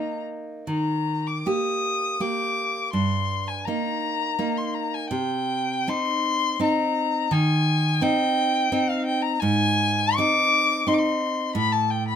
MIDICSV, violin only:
0, 0, Header, 1, 2, 480
1, 0, Start_track
1, 0, Key_signature, -3, "major"
1, 0, Tempo, 860832
1, 377, Tempo, 779221
1, 378, Time_signature, 3, 2, 24, 8
1, 857, Tempo, 731707
1, 3257, Tempo, 775194
1, 3737, Tempo, 715137
1, 5177, Tempo, 693642
1, 6137, Tempo, 750939
1, 6617, Tempo, 699301
1, 7978, End_track
2, 0, Start_track
2, 0, Title_t, "Violin"
2, 0, Program_c, 0, 40
2, 0, Note_on_c, 0, 82, 59
2, 123, Note_off_c, 0, 82, 0
2, 377, Note_on_c, 0, 82, 78
2, 741, Note_on_c, 0, 86, 72
2, 750, Note_off_c, 0, 82, 0
2, 863, Note_on_c, 0, 87, 89
2, 872, Note_off_c, 0, 86, 0
2, 1354, Note_on_c, 0, 86, 83
2, 1364, Note_off_c, 0, 87, 0
2, 1817, Note_off_c, 0, 86, 0
2, 1821, Note_on_c, 0, 84, 87
2, 2184, Note_on_c, 0, 80, 77
2, 2194, Note_off_c, 0, 84, 0
2, 2299, Note_on_c, 0, 82, 94
2, 2309, Note_off_c, 0, 80, 0
2, 2900, Note_on_c, 0, 84, 77
2, 2910, Note_off_c, 0, 82, 0
2, 3014, Note_on_c, 0, 82, 84
2, 3024, Note_off_c, 0, 84, 0
2, 3141, Note_on_c, 0, 80, 83
2, 3151, Note_off_c, 0, 82, 0
2, 3244, Note_off_c, 0, 80, 0
2, 3248, Note_on_c, 0, 79, 91
2, 3733, Note_on_c, 0, 84, 103
2, 3743, Note_off_c, 0, 79, 0
2, 4225, Note_off_c, 0, 84, 0
2, 4230, Note_on_c, 0, 82, 96
2, 4701, Note_on_c, 0, 80, 103
2, 4711, Note_off_c, 0, 82, 0
2, 5172, Note_on_c, 0, 79, 107
2, 5182, Note_off_c, 0, 80, 0
2, 5771, Note_on_c, 0, 77, 91
2, 5781, Note_off_c, 0, 79, 0
2, 5882, Note_off_c, 0, 77, 0
2, 5886, Note_on_c, 0, 79, 98
2, 5996, Note_on_c, 0, 82, 95
2, 6006, Note_off_c, 0, 79, 0
2, 6118, Note_on_c, 0, 80, 113
2, 6129, Note_off_c, 0, 82, 0
2, 6608, Note_on_c, 0, 86, 116
2, 6617, Note_off_c, 0, 80, 0
2, 7097, Note_on_c, 0, 84, 92
2, 7107, Note_off_c, 0, 86, 0
2, 7143, Note_on_c, 0, 86, 65
2, 7153, Note_off_c, 0, 84, 0
2, 7176, Note_on_c, 0, 84, 83
2, 7186, Note_off_c, 0, 86, 0
2, 7560, Note_off_c, 0, 84, 0
2, 7564, Note_on_c, 0, 83, 108
2, 7678, Note_on_c, 0, 81, 93
2, 7689, Note_off_c, 0, 83, 0
2, 7804, Note_on_c, 0, 79, 92
2, 7814, Note_off_c, 0, 81, 0
2, 7920, Note_off_c, 0, 79, 0
2, 7924, Note_on_c, 0, 83, 85
2, 7978, Note_off_c, 0, 83, 0
2, 7978, End_track
0, 0, End_of_file